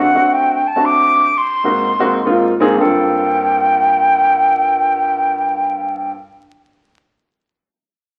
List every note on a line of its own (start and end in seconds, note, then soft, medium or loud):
0.00 0.10 F#4 medium
0.00 0.34 F#5 medium
0.14 0.58 A3 medium
0.14 0.58 C4 medium
0.14 0.58 D4 medium
0.14 0.58 F#4 medium
0.33 0.69 G5 medium
0.68 0.87 A5 medium
0.76 1.25 A3 medium
0.76 1.25 C4 medium
0.76 1.26 D4 medium
0.76 1.26 F#4 medium
0.85 1.39 D6 loud
1.38 2.43 C6 loud
1.64 1.89 G#2 medium
1.64 1.89 A#3 medium
1.64 1.89 C4 medium
1.64 1.89 D#4 medium
1.64 1.89 F#4 medium
1.99 2.18 G#2 medium
1.99 2.18 A#3 medium
1.99 2.18 C4 medium
1.99 2.18 D#4 medium
1.99 2.18 F#4 loud
2.26 2.50 G#2 medium
2.26 2.50 A#3 medium
2.26 2.51 C4 medium
2.26 2.51 D#4 medium
2.26 2.51 F4 medium
2.60 2.73 G#2 medium
2.60 2.73 A#3 medium
2.60 2.73 C4 medium
2.60 2.73 D#4 medium
2.60 2.74 G#4 loud
2.76 6.09 G2 medium
2.76 6.10 A#3 medium
2.76 6.11 C4 medium
2.76 6.12 D4 medium
2.76 6.13 F4 medium
2.76 6.12 G5 medium
2.81 6.14 A4 medium